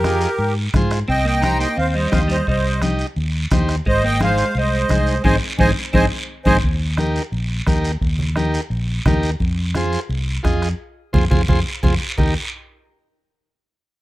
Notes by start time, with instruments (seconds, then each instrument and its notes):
Already playing: fingered electric bass F2, accordion G4 A#4
0.04 transistor combo organ F4 G#4 D#5, bombo rim, high conga, short guiro
0.21 short guiro
0.39 fingered electric bass G#2, high conga, long guiro
0.74 fingered electric bass G#2, transistor combo organ F4 G#4 C5, bombo low, bombo rim, high conga, low conga, short guiro
0.91 bombo rim, short guiro
1.08 fingered electric bass C2, clean electric guitar C4, accordion D#5 G5, bombo low, high conga, long guiro
1.25 clean electric guitar A#3, accordion D#5 G5
1.42 clean electric guitar D#4, transistor combo organ D#4 G4 C5, accordion G5 A#5, bombo rim, high conga, short guiro
1.59 clean electric guitar A#3, accordion D#5 G5, short guiro
1.77 fingered electric bass D#2, clean electric guitar C4, accordion C5 F5, high conga, long guiro
1.94 clean electric guitar G3, accordion C5 D#5
2.12 fingered electric bass D#2, clean electric guitar C4, transistor combo organ D#4 G4 D#5, accordion C5 F5, bombo low, bombo rim, high conga, short guiro
2.28 clean electric guitar G3, accordion C5 D#5, short guiro
2.47 fingered electric bass C2, clean electric guitar G3, accordion C5 D#5, bombo low, high conga, long guiro
2.82 transistor combo organ D#4 G4 D#5, bombo rim, high conga, short guiro
2.99 short guiro
3.16 fingered electric bass D#2, high conga, long guiro
3.51 fingered electric bass D#2, transistor combo organ D#4 G4 C5, bombo low, bombo rim, high conga, low conga, short guiro
3.69 bombo rim, short guiro
3.85 fingered electric bass G#1, clean electric guitar G#3, accordion C5 D#5, bombo low, high conga, long guiro
4.04 clean electric guitar A#3, accordion D#5 G5
4.20 clean electric guitar G#3, transistor combo organ D#4 G#4 C5, accordion C5 F5, bombo rim, high conga, short guiro
4.38 short guiro
4.55 fingered electric bass C2, clean electric guitar G#3, accordion C5 D#5, high conga, long guiro
4.89 fingered electric bass C2, transistor combo organ D#4 G#4 C5, bombo low, bombo rim, high conga, short guiro
5.07 short guiro
5.24 fingered electric bass G#1, clean electric guitar D#3 G#3 C4, transistor combo organ D#4 G#4 C5, accordion C5 D#5 G#5, bombo low, high conga, long guiro
5.59 fingered electric bass G#1, clean electric guitar D#3 G#3 C4, transistor combo organ D#4 G#4 C5, accordion C5 D#5 G#5, bombo low, high conga, long guiro
5.93 fingered electric bass G#1, clean electric guitar D#3 G#3 C4, transistor combo organ D#4 G#4 C5, accordion C5 D#5 G#5, bombo low, high conga, long guiro
6.45 fingered electric bass G#1, clean electric guitar D#3 G#3 C4, transistor combo organ D#4 G#4 C5, accordion C5 D#5 G#5, bombo low, high conga, long guiro
6.63 fingered electric bass D#2, bombo low, high conga, long guiro
6.97 transistor combo organ D#4 G4 A#4, bombo rim, high conga, short guiro
7.16 short guiro
7.32 fingered electric bass A#1, high conga, long guiro
7.67 fingered electric bass D#2, transistor combo organ D#4 G4 A#4, bombo low, bombo rim, high conga, short guiro
7.85 short guiro
8.01 fingered electric bass D#2, bombo low, high conga, long guiro
8.19 low conga
8.36 transistor combo organ D#4 G4 A#4, bombo rim, high conga, short guiro
8.54 short guiro
8.70 fingered electric bass A#1, high conga, long guiro
9.06 fingered electric bass D#2, transistor combo organ D#4 G4 A#4, bombo low, bombo rim, high conga, low conga, short guiro
9.23 short guiro
9.40 fingered electric bass F2, bombo low, high conga, long guiro
9.74 transistor combo organ F4 G#4 C5, bombo rim, high conga, short guiro
9.92 short guiro
10.09 fingered electric bass C2, high conga, long guiro
10.43 fingered electric bass F2, transistor combo organ F4 G#4 D#5, bombo low, bombo rim, high conga, short guiro
10.62 bombo rim, short guiro
11.13 fingered electric bass F2, transistor combo organ F4 G#4 C5, bombo low, low conga, long guiro
11.31 fingered electric bass F2, transistor combo organ F4 G#4 C5, bombo low, low conga, long guiro
11.48 fingered electric bass F2, transistor combo organ F4 G#4 C5, bombo low, low conga, long guiro
11.83 fingered electric bass F2, transistor combo organ F4 G#4 C5, bombo low, low conga, long guiro
12.18 fingered electric bass D#2, transistor combo organ D#4 G4 A#4, bombo low, low conga, long guiro